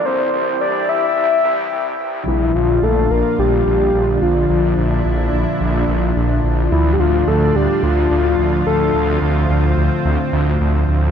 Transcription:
0.05 C2 C3 E3 G3 E4 G4 C5
0.33 C2
0.61 C2 D5
0.89 C2 E5
1.16 C2
1.44 C2
1.72 C2
2.00 C2
2.28 A#1 A#2 D3 F3 D4 E4 F4
2.55 A#1 F4
2.83 A#1 A4
3.11 A#1 A#4
3.39 A#1 G4
3.67 A#1
3.94 A#1
4.22 A#1 F4
4.50 A#1 E4
4.78 A#1
5.05 A#1
5.33 A#1
5.61 A#1
5.89 A#1
6.16 A#1
6.44 A#1
6.72 D2 A2 D4 E4 F4
6.93 G4
7.00 D2 F4
7.27 D2 A4
7.55 D2 G4
7.83 D2 F4
8.11 D2
8.39 D2
8.67 D2 A4
8.94 D2 C4
9.22 D2
9.50 D2
9.78 D2
10.05 D2
10.33 D2
10.61 D2
10.89 D2

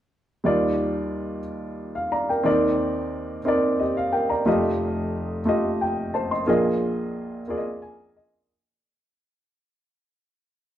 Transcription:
0.44 D#2 D#3 G3 D#4 F4 D5
1.95 F5
2.12 D5 A#5
2.29 A#4 G5
2.44 D#2 D#3 C4 D#4 A#4 D5
3.45 C4 D#4 A#4 D5
3.80 G4 D#5
3.97 F5
4.12 A#4 G5
4.30 D5 A#5
4.45 F1 F2 A3 F4 G4 D#5
5.45 A3 F4 G4 D#5
5.81 G5
6.14 C5 A5
6.31 D#5 C6
6.47 A#1 A#2 A#3 F4 G#4 D#5
7.48 A#3 F4 G#4 D5
7.57 D#5
7.82 G#5
8.17 D#5

